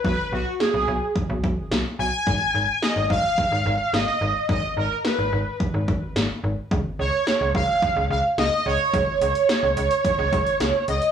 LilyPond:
<<
  \new Staff \with { instrumentName = "Analog polysynth" } { \time 4/4 \key aes \dorian \tempo 4 = 108 b'8 fis'8 aes'4 r4. aes''8~ | aes''4 ees''8 f''4. ees''4 | ees''8 bes'8 ces''4 r2 | r8 des''4 f''4 f''8 ees''8 des''8~ |
des''2.~ des''8 ees''8 | }
  \new Staff \with { instrumentName = "FM bass" } { \clef bass \time 4/4 \key aes \dorian b,,16 r16 b,,16 r8 b,,16 b,,16 r8 b,,16 b,,16 r16 b,,16 r16 b,,16 r16 | aes,,16 r16 aes,,16 r8 aes,,16 aes,,16 r8 aes,,16 aes,,16 r16 aes,,16 r16 aes,,16 r16 | aes,,16 r16 aes,,16 r8 aes,,16 aes,,16 r8 aes,,16 aes,,16 r16 aes,,16 r16 aes,,16 r16 | des,16 r16 des,16 r8 des,16 des,16 r8 des,16 des,16 r16 des,16 r16 des,16 r16 |
des,16 r16 des,16 r8 des,16 des,16 r8 des,16 des,16 r16 des,16 r16 des,16 r16 | }
  \new DrumStaff \with { instrumentName = "Drums" } \drummode { \time 4/4 bd4 sn4 bd8 bd8 sn4 | bd4 sn8 bd8 bd4 sn4 | bd4 sn4 bd8 bd8 sn4 | bd4 sn8 bd8 bd4 sn4 |
<hh bd>8 hh16 hh16 <hh sn>8 hh16 hh16 <hh bd>8 <hh bd>16 hh16 <hh sn>8 hh16 hh16 | }
>>